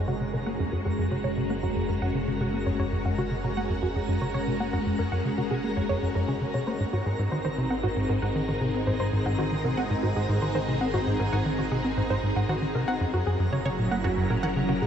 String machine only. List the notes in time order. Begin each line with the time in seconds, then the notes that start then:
Already playing: G#3 C#4 D#4 F#4
6.80 C4
6.96 D#4
7.76 G#4
13.01 F#3
13.47 C#4
13.68 E4
13.94 A#4